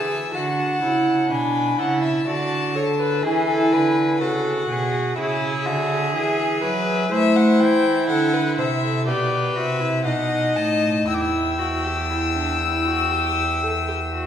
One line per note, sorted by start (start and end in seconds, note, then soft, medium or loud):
0.00 0.34 E3 medium
0.00 0.34 G#4 medium
0.00 0.37 E5 medium
0.00 0.33 A5 medium
0.34 0.82 D3 medium
0.34 0.82 F#4 medium
0.34 1.32 F#5 medium
0.34 1.29 A5 medium
0.83 1.32 C#3 medium
0.83 1.30 E4 medium
1.30 1.78 B2 medium
1.30 1.80 D4 medium
1.30 1.79 G#5 medium
1.30 1.80 B5 medium
1.78 2.26 C#3 medium
1.78 2.27 E4 medium
1.78 2.02 F#5 medium
1.78 3.24 A5 medium
2.03 2.27 E5 medium
2.27 3.22 D3 medium
2.27 2.77 F#4 medium
2.27 2.75 D5 medium
2.76 3.26 A4 medium
2.76 2.84 C#5 medium
3.00 3.25 B4 medium
3.23 3.74 E3 medium
3.23 4.21 E4 medium
3.23 3.48 G#4 medium
3.23 4.20 G#5 medium
3.48 3.74 A4 medium
3.72 4.22 D3 medium
3.72 4.22 B4 medium
4.21 4.69 C#3 medium
4.21 5.16 F#4 medium
4.21 4.69 A4 medium
4.21 5.16 F#5 medium
4.69 5.17 B2 medium
4.69 5.17 G#4 medium
5.17 5.67 C#3 medium
5.17 5.67 E4 medium
5.17 7.08 G#4 loud
5.17 7.08 E5 medium
5.66 6.15 D3 medium
5.66 6.14 F#4 medium
6.14 6.64 E3 medium
6.14 6.62 G#4 medium
6.62 7.10 F#3 medium
6.62 7.13 B4 medium
7.11 7.61 A3 medium
7.11 9.03 E4 loud
7.11 8.07 C5 medium
7.11 7.38 E5 loud
7.36 7.62 F#5 medium
7.60 8.10 E3 medium
7.60 8.08 G5 medium
8.08 8.59 D3 medium
8.08 8.35 A4 medium
8.08 8.57 F#5 medium
8.33 8.57 B4 medium
8.58 9.08 C3 medium
8.58 8.66 C5 medium
8.58 9.06 E5 medium
8.83 9.09 A4 medium
9.07 9.55 B2 medium
9.07 9.57 G4 medium
9.07 10.05 B4 medium
9.07 9.55 D5 medium
9.56 10.07 C3 medium
9.56 9.82 F#4 medium
9.56 10.05 E5 medium
9.80 10.07 E4 medium
10.05 10.57 B2 medium
10.05 11.07 D#4 medium
10.05 11.09 D#5 medium
10.05 10.57 F#5 medium
10.56 11.07 A2 medium
10.56 11.07 A5 medium
11.07 14.27 E2 medium
11.07 11.60 E4 medium
11.07 14.27 G5 medium
11.07 11.16 E6 medium
11.14 11.23 D6 medium
11.22 14.27 E6 medium
11.59 11.86 F#4 medium
11.84 12.09 G4 medium
12.09 12.17 E4 medium
12.35 12.60 D4 medium
12.61 12.88 E4 medium
12.86 13.13 F#4 medium
13.12 13.62 G4 medium
13.63 13.71 A4 medium
13.88 13.96 G4 medium
14.14 14.27 F#4 medium